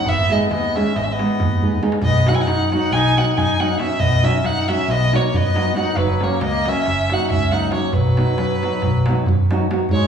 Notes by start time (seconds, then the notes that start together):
Already playing: F#5
0.05 G#1 B3 E5, darbuka dum
0.19 darbuka tek
0.30 G#3 B3 D#4 G#4 D#5, darbuka tek
0.42 darbuka tek
0.51 D#2 B3 D#5, darbuka tek
0.64 darbuka tek
0.75 G#3 B3 C#4 D#4 G#4 E5, darbuka tek
0.86 darbuka tek
0.95 G#1 B3 D#5, darbuka tek
1.02 C#4 E5
1.08 darbuka tek
1.12 B3 D#5
1.19 G#3 B3 D#4 G#4, darbuka tek
1.40 D#2, darbuka dum
1.51 darbuka dum
1.61 G#3 B3 D#4 G#4, darbuka dum
1.72 darbuka dum
1.81 G#3 B3 D#4 G#4, darbuka tek
1.92 darbuka tek
2.02 B1 B3 D#5, darbuka dum
2.26 F#3 B3 D#4 F#4 F#5, darbuka tek
2.33 E4 G#5
2.41 D#4 F#5
2.47 F#2, darbuka tek
2.60 darbuka tek
2.71 F#3 B3 D#4 F#4 F#5, darbuka tek
2.82 darbuka tek
2.92 B1 D#4 G#5, darbuka tek
3.16 F#3 B3 D#4 F#4 F#5, darbuka tek
3.37 F#2 D#4 G#5, darbuka dum
3.59 F#3 B3 D#4 F#4 F#5, darbuka tek
3.79 F#3 B3 C#4 D#4 F#4 E5, darbuka tek
4.00 B1 B3 D#5, darbuka dum
4.22 F#3 B3 C#4 D#4 F#4 E5, darbuka tek
4.44 F#2 D#4 F#5, darbuka tek
4.57 darbuka tek
4.67 F#3 B3 C#4 D#4 F#4 E5, darbuka tek
4.79 darbuka tek
4.88 B1 B3 D#5, darbuka tek
5.11 F#3 B3 D#4 F#4, darbuka tek
5.16 A#3 C#5
5.34 F#2 B3 D#5, darbuka dum
5.54 F#3 B3 D#4 F#4, darbuka tek
5.74 F#3 B3 D#4 F#4 F#5, darbuka tek
5.79 D#4
5.96 F#1 F#3 B4, darbuka dum
6.20 F#3 A#3 C#4 F#4 C#5, darbuka tek
6.24 A#3
6.41 C#2 D#5, darbuka tek
6.46 A#3
6.54 darbuka tek
6.65 F#3 A#3 C#4 F#4 E5, darbuka tek
6.69 C#4
6.75 darbuka tek
6.86 F#1, darbuka tek
7.10 F#3 A#3 C#4 D#4 F#4 F#5, darbuka tek
7.30 C#2 C#4 E5, darbuka dum
7.52 F#3 A#3 C#4 D#4 F#4 F#5, darbuka tek
7.72 F#3 A#3 C#4 F#4 C#5, darbuka tek
7.88 A#3 C#5
7.93 B1 F#3 B4, darbuka dum
8.17 F#3 B3 D#4 F#4, darbuka tek
8.38 F#2, darbuka tek
8.51 darbuka tek
8.63 F#3 B3 D#4 F#4, darbuka tek
8.73 darbuka tek
8.82 B1, darbuka tek, darbuka dum
9.06 F#3 B3 D#4 F#4, darbuka tek
9.26 F#2, darbuka dum
9.50 F#3 B3 D#4 F#4, darbuka tek
9.61 darbuka tek
9.70 F#3 B3 D#4 F#4, darbuka tek
9.80 darbuka tek
9.89 G#2 C#5, darbuka dum
9.94 G#3
10.02 darbuka tek